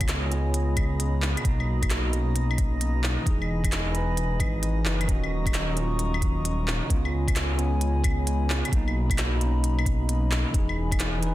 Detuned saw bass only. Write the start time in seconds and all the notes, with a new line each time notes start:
Already playing: C#2
0.31 C#2
1.45 B1
2.13 B1
3.26 E1
3.49 E1
3.95 E1
4.40 G#1
4.85 F#1
5.08 D#1
5.76 D#1
6.90 C#2
7.13 C#2
7.59 C#2
8.72 B1
9.41 B1
10.54 E1
10.78 E1
11.23 E1